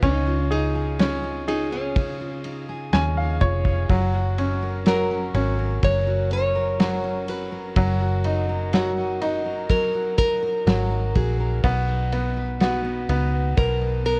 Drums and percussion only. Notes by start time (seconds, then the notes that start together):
0.03 kick, ride
0.51 ride
0.99 snare, ride
1.48 ride
1.96 kick, ride
2.44 ride
2.93 snare, ride
3.41 kick, ride
3.65 kick
3.90 kick, ride
4.38 ride
4.86 snare, ride
5.35 ride
5.83 kick, ride
6.31 ride
6.80 snare, ride
7.28 ride
7.76 kick, ride
8.24 ride
8.73 snare, ride
9.22 ride
9.69 kick, ride
10.18 kick, ride
10.67 snare, ride
11.15 kick, ride
11.63 kick, ride
12.12 ride
12.60 snare, ride
13.09 ride
13.57 kick, ride
14.06 ride